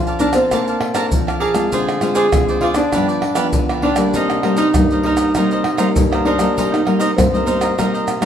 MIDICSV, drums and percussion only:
0, 0, Header, 1, 4, 480
1, 0, Start_track
1, 0, Key_signature, -3, "minor"
1, 0, Tempo, 605449
1, 1370, Time_signature, 4, 2, 24, 8
1, 6542, End_track
2, 0, Start_track
2, 0, Title_t, "Pandeiro"
2, 54, Note_on_c, 9, 54, 31
2, 133, Note_off_c, 9, 54, 0
2, 155, Note_on_c, 9, 54, 53
2, 234, Note_off_c, 9, 54, 0
2, 260, Note_on_c, 9, 54, 67
2, 339, Note_off_c, 9, 54, 0
2, 407, Note_on_c, 9, 54, 77
2, 487, Note_off_c, 9, 54, 0
2, 535, Note_on_c, 9, 54, 32
2, 614, Note_off_c, 9, 54, 0
2, 639, Note_on_c, 9, 54, 57
2, 718, Note_off_c, 9, 54, 0
2, 750, Note_on_c, 9, 54, 66
2, 829, Note_off_c, 9, 54, 0
2, 884, Note_on_c, 9, 54, 77
2, 963, Note_off_c, 9, 54, 0
2, 1017, Note_on_c, 9, 54, 32
2, 1096, Note_off_c, 9, 54, 0
2, 1116, Note_on_c, 9, 54, 55
2, 1196, Note_off_c, 9, 54, 0
2, 1225, Note_on_c, 9, 54, 65
2, 1304, Note_off_c, 9, 54, 0
2, 1366, Note_on_c, 9, 54, 75
2, 1445, Note_off_c, 9, 54, 0
2, 1495, Note_on_c, 9, 54, 33
2, 1574, Note_off_c, 9, 54, 0
2, 1595, Note_on_c, 9, 54, 54
2, 1674, Note_off_c, 9, 54, 0
2, 1705, Note_on_c, 9, 54, 64
2, 1785, Note_off_c, 9, 54, 0
2, 1843, Note_on_c, 9, 54, 75
2, 1922, Note_off_c, 9, 54, 0
2, 1970, Note_on_c, 9, 54, 29
2, 2049, Note_off_c, 9, 54, 0
2, 2067, Note_on_c, 9, 54, 60
2, 2147, Note_off_c, 9, 54, 0
2, 2176, Note_on_c, 9, 54, 65
2, 2255, Note_off_c, 9, 54, 0
2, 2319, Note_on_c, 9, 54, 72
2, 2398, Note_off_c, 9, 54, 0
2, 2450, Note_on_c, 9, 54, 32
2, 2529, Note_off_c, 9, 54, 0
2, 2552, Note_on_c, 9, 54, 55
2, 2631, Note_off_c, 9, 54, 0
2, 2659, Note_on_c, 9, 54, 71
2, 2738, Note_off_c, 9, 54, 0
2, 2796, Note_on_c, 9, 54, 87
2, 2875, Note_off_c, 9, 54, 0
2, 2929, Note_on_c, 9, 54, 33
2, 3008, Note_off_c, 9, 54, 0
2, 3031, Note_on_c, 9, 54, 55
2, 3110, Note_off_c, 9, 54, 0
2, 3139, Note_on_c, 9, 54, 69
2, 3218, Note_off_c, 9, 54, 0
2, 3280, Note_on_c, 9, 54, 80
2, 3359, Note_off_c, 9, 54, 0
2, 3407, Note_on_c, 9, 54, 31
2, 3486, Note_off_c, 9, 54, 0
2, 3514, Note_on_c, 9, 54, 52
2, 3593, Note_off_c, 9, 54, 0
2, 3620, Note_on_c, 9, 54, 64
2, 3700, Note_off_c, 9, 54, 0
2, 3759, Note_on_c, 9, 54, 82
2, 3838, Note_off_c, 9, 54, 0
2, 3889, Note_on_c, 9, 54, 31
2, 3968, Note_off_c, 9, 54, 0
2, 3991, Note_on_c, 9, 54, 60
2, 4070, Note_off_c, 9, 54, 0
2, 4098, Note_on_c, 9, 54, 64
2, 4177, Note_off_c, 9, 54, 0
2, 4239, Note_on_c, 9, 54, 79
2, 4319, Note_off_c, 9, 54, 0
2, 4369, Note_on_c, 9, 54, 35
2, 4448, Note_off_c, 9, 54, 0
2, 4473, Note_on_c, 9, 54, 56
2, 4552, Note_off_c, 9, 54, 0
2, 4585, Note_on_c, 9, 54, 66
2, 4664, Note_off_c, 9, 54, 0
2, 4725, Note_on_c, 9, 54, 87
2, 4804, Note_off_c, 9, 54, 0
2, 4856, Note_on_c, 9, 54, 33
2, 4935, Note_off_c, 9, 54, 0
2, 4958, Note_on_c, 9, 54, 55
2, 5038, Note_off_c, 9, 54, 0
2, 5067, Note_on_c, 9, 54, 64
2, 5146, Note_off_c, 9, 54, 0
2, 5215, Note_on_c, 9, 54, 86
2, 5295, Note_off_c, 9, 54, 0
2, 5343, Note_on_c, 9, 54, 30
2, 5422, Note_off_c, 9, 54, 0
2, 5444, Note_on_c, 9, 54, 47
2, 5523, Note_off_c, 9, 54, 0
2, 5555, Note_on_c, 9, 54, 59
2, 5634, Note_off_c, 9, 54, 0
2, 5696, Note_on_c, 9, 54, 85
2, 5775, Note_off_c, 9, 54, 0
2, 5824, Note_on_c, 9, 54, 31
2, 5903, Note_off_c, 9, 54, 0
2, 5924, Note_on_c, 9, 54, 58
2, 6003, Note_off_c, 9, 54, 0
2, 6036, Note_on_c, 9, 54, 64
2, 6115, Note_off_c, 9, 54, 0
2, 6173, Note_on_c, 9, 54, 71
2, 6252, Note_off_c, 9, 54, 0
2, 6301, Note_on_c, 9, 54, 32
2, 6381, Note_off_c, 9, 54, 0
2, 6404, Note_on_c, 9, 54, 57
2, 6483, Note_off_c, 9, 54, 0
2, 6516, Note_on_c, 9, 54, 69
2, 6542, Note_off_c, 9, 54, 0
2, 6542, End_track
3, 0, Start_track
3, 0, Title_t, "Tamborim"
3, 260, Note_on_c, 9, 60, 84
3, 339, Note_off_c, 9, 60, 0
3, 407, Note_on_c, 9, 60, 79
3, 487, Note_off_c, 9, 60, 0
3, 639, Note_on_c, 9, 60, 84
3, 718, Note_off_c, 9, 60, 0
3, 750, Note_on_c, 9, 60, 83
3, 829, Note_off_c, 9, 60, 0
3, 1017, Note_on_c, 9, 60, 75
3, 1096, Note_off_c, 9, 60, 0
3, 1225, Note_on_c, 9, 60, 74
3, 1304, Note_off_c, 9, 60, 0
3, 1495, Note_on_c, 9, 60, 75
3, 1574, Note_off_c, 9, 60, 0
3, 1595, Note_on_c, 9, 60, 65
3, 1674, Note_off_c, 9, 60, 0
3, 1843, Note_on_c, 9, 60, 87
3, 1922, Note_off_c, 9, 60, 0
3, 2176, Note_on_c, 9, 60, 78
3, 2255, Note_off_c, 9, 60, 0
3, 2319, Note_on_c, 9, 60, 73
3, 2398, Note_off_c, 9, 60, 0
3, 2552, Note_on_c, 9, 60, 78
3, 2631, Note_off_c, 9, 60, 0
3, 2659, Note_on_c, 9, 60, 77
3, 2738, Note_off_c, 9, 60, 0
3, 2929, Note_on_c, 9, 60, 74
3, 3008, Note_off_c, 9, 60, 0
3, 3139, Note_on_c, 9, 60, 84
3, 3218, Note_off_c, 9, 60, 0
3, 3407, Note_on_c, 9, 60, 74
3, 3486, Note_off_c, 9, 60, 0
3, 3514, Note_on_c, 9, 60, 71
3, 3593, Note_off_c, 9, 60, 0
3, 3759, Note_on_c, 9, 60, 75
3, 3838, Note_off_c, 9, 60, 0
3, 4098, Note_on_c, 9, 60, 76
3, 4177, Note_off_c, 9, 60, 0
3, 4239, Note_on_c, 9, 60, 74
3, 4319, Note_off_c, 9, 60, 0
3, 4473, Note_on_c, 9, 60, 78
3, 4552, Note_off_c, 9, 60, 0
3, 4585, Note_on_c, 9, 60, 82
3, 4664, Note_off_c, 9, 60, 0
3, 4856, Note_on_c, 9, 60, 85
3, 4935, Note_off_c, 9, 60, 0
3, 5067, Note_on_c, 9, 60, 77
3, 5146, Note_off_c, 9, 60, 0
3, 5343, Note_on_c, 9, 60, 74
3, 5422, Note_off_c, 9, 60, 0
3, 5444, Note_on_c, 9, 60, 67
3, 5523, Note_off_c, 9, 60, 0
3, 5696, Note_on_c, 9, 60, 76
3, 5775, Note_off_c, 9, 60, 0
3, 6036, Note_on_c, 9, 60, 75
3, 6115, Note_off_c, 9, 60, 0
3, 6173, Note_on_c, 9, 60, 75
3, 6252, Note_off_c, 9, 60, 0
3, 6404, Note_on_c, 9, 60, 79
3, 6483, Note_off_c, 9, 60, 0
3, 6516, Note_on_c, 9, 60, 84
3, 6542, Note_off_c, 9, 60, 0
3, 6542, End_track
4, 0, Start_track
4, 0, Title_t, "Drums"
4, 54, Note_on_c, 9, 82, 31
4, 133, Note_off_c, 9, 82, 0
4, 155, Note_on_c, 9, 82, 68
4, 234, Note_off_c, 9, 82, 0
4, 260, Note_on_c, 9, 82, 80
4, 339, Note_off_c, 9, 82, 0
4, 407, Note_on_c, 9, 82, 76
4, 407, Note_on_c, 9, 87, 58
4, 487, Note_off_c, 9, 82, 0
4, 487, Note_off_c, 9, 87, 0
4, 535, Note_on_c, 9, 82, 32
4, 614, Note_off_c, 9, 82, 0
4, 750, Note_on_c, 9, 82, 84
4, 829, Note_off_c, 9, 82, 0
4, 884, Note_on_c, 9, 82, 80
4, 884, Note_on_c, 9, 87, 98
4, 963, Note_off_c, 9, 82, 0
4, 963, Note_off_c, 9, 87, 0
4, 1017, Note_on_c, 9, 82, 33
4, 1096, Note_off_c, 9, 82, 0
4, 1225, Note_on_c, 9, 82, 82
4, 1304, Note_off_c, 9, 82, 0
4, 1366, Note_on_c, 9, 82, 80
4, 1366, Note_on_c, 9, 87, 59
4, 1445, Note_off_c, 9, 82, 0
4, 1445, Note_off_c, 9, 87, 0
4, 1495, Note_on_c, 9, 82, 32
4, 1574, Note_off_c, 9, 82, 0
4, 1595, Note_on_c, 9, 82, 58
4, 1674, Note_off_c, 9, 82, 0
4, 1705, Note_on_c, 9, 82, 79
4, 1785, Note_off_c, 9, 82, 0
4, 1843, Note_on_c, 9, 82, 80
4, 1843, Note_on_c, 9, 87, 109
4, 1922, Note_off_c, 9, 82, 0
4, 1922, Note_off_c, 9, 87, 0
4, 1970, Note_on_c, 9, 82, 31
4, 2049, Note_off_c, 9, 82, 0
4, 2176, Note_on_c, 9, 82, 78
4, 2255, Note_off_c, 9, 82, 0
4, 2319, Note_on_c, 9, 82, 83
4, 2319, Note_on_c, 9, 87, 54
4, 2398, Note_off_c, 9, 82, 0
4, 2398, Note_off_c, 9, 87, 0
4, 2450, Note_on_c, 9, 82, 30
4, 2529, Note_off_c, 9, 82, 0
4, 2659, Note_on_c, 9, 82, 87
4, 2738, Note_off_c, 9, 82, 0
4, 2796, Note_on_c, 9, 82, 82
4, 2796, Note_on_c, 9, 87, 97
4, 2875, Note_off_c, 9, 82, 0
4, 2875, Note_off_c, 9, 87, 0
4, 2929, Note_on_c, 9, 82, 32
4, 3008, Note_off_c, 9, 82, 0
4, 3139, Note_on_c, 9, 82, 79
4, 3218, Note_off_c, 9, 82, 0
4, 3280, Note_on_c, 9, 82, 75
4, 3280, Note_on_c, 9, 87, 59
4, 3359, Note_off_c, 9, 82, 0
4, 3359, Note_off_c, 9, 87, 0
4, 3407, Note_on_c, 9, 82, 30
4, 3486, Note_off_c, 9, 82, 0
4, 3620, Note_on_c, 9, 82, 78
4, 3700, Note_off_c, 9, 82, 0
4, 3759, Note_on_c, 9, 82, 82
4, 3759, Note_on_c, 9, 87, 111
4, 3838, Note_off_c, 9, 82, 0
4, 3838, Note_off_c, 9, 87, 0
4, 3889, Note_on_c, 9, 82, 32
4, 3968, Note_off_c, 9, 82, 0
4, 4098, Note_on_c, 9, 82, 80
4, 4177, Note_off_c, 9, 82, 0
4, 4239, Note_on_c, 9, 82, 76
4, 4239, Note_on_c, 9, 87, 51
4, 4319, Note_off_c, 9, 82, 0
4, 4319, Note_off_c, 9, 87, 0
4, 4369, Note_on_c, 9, 82, 33
4, 4448, Note_off_c, 9, 82, 0
4, 4585, Note_on_c, 9, 82, 84
4, 4664, Note_off_c, 9, 82, 0
4, 4725, Note_on_c, 9, 82, 81
4, 4725, Note_on_c, 9, 87, 105
4, 4804, Note_off_c, 9, 82, 0
4, 4804, Note_off_c, 9, 87, 0
4, 4856, Note_on_c, 9, 82, 33
4, 4935, Note_off_c, 9, 82, 0
4, 5067, Note_on_c, 9, 82, 82
4, 5146, Note_off_c, 9, 82, 0
4, 5215, Note_on_c, 9, 82, 80
4, 5215, Note_on_c, 9, 87, 62
4, 5295, Note_off_c, 9, 82, 0
4, 5295, Note_off_c, 9, 87, 0
4, 5343, Note_on_c, 9, 82, 31
4, 5422, Note_off_c, 9, 82, 0
4, 5555, Note_on_c, 9, 82, 75
4, 5634, Note_off_c, 9, 82, 0
4, 5696, Note_on_c, 9, 82, 82
4, 5696, Note_on_c, 9, 87, 102
4, 5775, Note_off_c, 9, 82, 0
4, 5775, Note_off_c, 9, 87, 0
4, 5824, Note_on_c, 9, 82, 32
4, 5903, Note_off_c, 9, 82, 0
4, 5924, Note_on_c, 9, 82, 73
4, 6003, Note_off_c, 9, 82, 0
4, 6036, Note_on_c, 9, 82, 75
4, 6115, Note_off_c, 9, 82, 0
4, 6173, Note_on_c, 9, 82, 74
4, 6173, Note_on_c, 9, 87, 52
4, 6252, Note_off_c, 9, 82, 0
4, 6252, Note_off_c, 9, 87, 0
4, 6301, Note_on_c, 9, 82, 34
4, 6381, Note_off_c, 9, 82, 0
4, 6404, Note_on_c, 9, 82, 69
4, 6483, Note_off_c, 9, 82, 0
4, 6516, Note_on_c, 9, 82, 78
4, 6542, Note_off_c, 9, 82, 0
4, 6542, End_track
0, 0, End_of_file